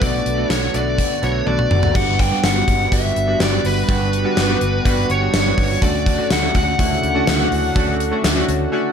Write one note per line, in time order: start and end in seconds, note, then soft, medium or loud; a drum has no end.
0.00 0.19 B1 medium
0.00 1.91 D3 medium
0.00 0.37 A3 medium
0.00 1.91 A3 medium
0.00 0.38 B3 medium
0.00 1.91 B3 medium
0.00 0.02 D4 medium
0.00 0.25 D4 medium
0.00 0.02 F#4 medium
0.00 1.91 F#4 medium
0.00 0.25 F#4 medium
0.00 0.47 D5 medium
0.00 kick loud
0.00 closed hi-hat medium
0.26 0.43 B1 medium
0.26 closed hi-hat medium
0.37 0.61 A3 medium
0.37 0.61 B3 medium
0.37 0.61 D4 medium
0.37 0.61 F#4 medium
0.50 0.67 B1 medium
0.50 0.75 C#5 medium
0.50 snare medium
0.50 closed hi-hat medium
0.74 1.00 B1 medium
0.74 1.05 A3 medium
0.74 1.05 B3 medium
0.74 1.05 D4 medium
0.74 1.05 F#4 medium
0.74 1.47 D5 medium
0.74 closed hi-hat medium
0.98 kick medium
0.98 closed hi-hat medium
1.22 1.40 B1 medium
1.22 1.38 A3 medium
1.22 1.38 B3 medium
1.22 1.38 D4 medium
1.22 1.38 F#4 medium
1.22 1.47 C#5 medium
1.22 closed hi-hat medium
1.46 1.64 B1 medium
1.46 1.77 A3 medium
1.46 1.77 B3 medium
1.46 1.78 D4 medium
1.46 1.78 F#4 medium
1.46 1.97 D5 medium
1.46 high tom soft
1.59 mid tom medium
1.71 1.88 F#1 medium
1.71 mid tom medium
1.83 floor tom medium
1.94 2.30 G1 medium
1.94 5.78 D3 medium
1.94 2.18 G3 medium
1.94 5.78 G3 medium
1.94 2.18 B3 medium
1.94 5.78 B3 medium
1.94 2.18 D4 medium
1.94 8.92 F#4 medium
1.94 2.18 F#4 medium
1.94 2.20 F#5 loud
1.94 kick loud
1.94 crash medium
2.19 2.44 G5 medium
2.19 kick medium
2.19 closed hi-hat medium
2.31 2.46 G3 medium
2.31 2.47 B3 medium
2.31 2.47 D4 medium
2.31 2.47 F#4 medium
2.43 2.61 G1 medium
2.43 2.94 F#5 loud
2.43 snare loud
2.43 closed hi-hat medium
2.55 2.78 G3 medium
2.55 2.79 B3 medium
2.55 2.79 D4 medium
2.55 2.79 F#4 medium
2.68 2.85 G1 medium
2.68 kick medium
2.68 closed hi-hat medium
2.91 3.09 G1 loud
2.91 3.15 G3 medium
2.91 3.15 B3 medium
2.91 3.15 D4 medium
2.91 3.15 F#4 medium
2.91 3.41 E5 loud
2.91 kick loud
2.91 closed hi-hat medium
3.16 3.34 G1 medium
3.16 closed hi-hat medium
3.27 3.43 G3 medium
3.27 3.43 B3 medium
3.27 3.44 D4 medium
3.27 3.44 F#4 medium
3.40 3.58 G1 medium
3.40 3.66 D5 medium
3.40 snare loud
3.40 closed hi-hat medium
3.52 3.75 G3 medium
3.52 3.75 B3 medium
3.52 3.75 D4 medium
3.52 3.76 F#4 medium
3.64 3.82 G1 medium
3.64 5.11 B4 medium
3.64 open hi-hat medium
3.88 4.23 G1 medium
3.88 4.12 G3 medium
3.88 4.12 B3 medium
3.88 4.12 D4 medium
3.88 4.12 F#4 medium
3.88 kick loud
3.88 closed hi-hat medium
4.13 closed hi-hat medium
4.24 4.40 G3 medium
4.24 4.40 B3 medium
4.24 4.40 D4 medium
4.24 4.41 F#4 medium
4.37 4.54 G1 medium
4.37 snare loud
4.37 closed hi-hat medium
4.48 4.72 G3 medium
4.48 4.72 B3 medium
4.48 4.72 D4 medium
4.48 4.73 F#4 medium
4.61 4.79 G1 medium
4.61 closed hi-hat medium
4.85 5.03 G1 loud
4.85 5.08 G3 medium
4.85 5.08 B3 medium
4.85 5.09 D4 medium
4.85 5.09 F#4 medium
4.85 kick loud
4.85 closed hi-hat medium
5.10 5.27 G1 medium
5.10 5.83 C#5 medium
5.10 closed hi-hat medium
5.21 5.37 G3 medium
5.21 5.37 B3 medium
5.21 5.37 D4 medium
5.21 5.37 F#4 medium
5.34 5.51 G1 loud
5.34 snare loud
5.34 closed hi-hat medium
5.45 5.69 G3 medium
5.45 5.69 B3 medium
5.45 5.69 D4 medium
5.45 5.69 F#4 medium
5.58 5.75 G1 medium
5.58 kick medium
5.58 open hi-hat medium
5.81 6.17 D2 loud
5.81 8.92 C#3 medium
5.81 8.92 D3 medium
5.81 6.05 A3 medium
5.81 8.92 A3 medium
5.81 6.05 C#4 medium
5.81 6.05 D4 medium
5.81 6.05 F#4 medium
5.81 6.28 D5 medium
5.81 kick loud
5.81 closed hi-hat medium
6.06 kick medium
6.06 closed hi-hat medium
6.18 6.33 A3 medium
6.18 6.34 C#4 medium
6.18 6.34 D4 medium
6.18 6.34 F#4 medium
6.30 6.48 D2 medium
6.30 6.54 F#5 loud
6.30 snare loud
6.30 closed hi-hat loud
6.42 6.65 A3 medium
6.42 6.66 C#4 medium
6.42 6.66 D4 medium
6.42 6.66 F#4 medium
6.55 6.72 D2 medium
6.55 8.92 F#5 medium
6.55 kick medium
6.55 closed hi-hat medium
6.79 6.96 D2 loud
6.79 7.02 A3 medium
6.79 7.02 C#4 medium
6.79 7.02 D4 medium
6.79 7.02 E4 medium
6.79 kick medium
6.79 closed hi-hat medium
7.03 7.21 D2 medium
7.03 closed hi-hat medium
7.15 7.30 A3 medium
7.15 7.31 C#4 medium
7.15 7.31 D4 medium
7.15 7.31 F#4 loud
7.27 7.45 D2 loud
7.27 snare loud
7.27 closed hi-hat medium
7.39 7.62 A3 medium
7.39 7.62 C#4 medium
7.39 7.63 D4 medium
7.39 7.63 F#4 medium
7.51 7.69 D2 loud
7.51 open hi-hat medium
7.75 8.11 D2 loud
7.75 7.99 A3 loud
7.75 7.99 C#4 medium
7.75 7.99 D4 medium
7.75 7.99 F#4 loud
7.75 kick loud
7.75 closed hi-hat medium
8.00 closed hi-hat medium
8.11 8.27 A3 medium
8.11 8.27 C#4 medium
8.11 8.27 D4 medium
8.11 8.28 F#4 medium
8.24 8.41 D2 medium
8.24 snare loud
8.24 closed hi-hat medium
8.36 8.59 A3 medium
8.36 8.59 C#4 medium
8.36 8.59 D4 medium
8.36 8.60 F#4 loud
8.48 8.66 D2 medium
8.48 closed hi-hat medium
8.72 8.92 A3 medium
8.72 8.92 C#4 medium
8.72 8.92 D4 medium
8.72 8.92 F#4 loud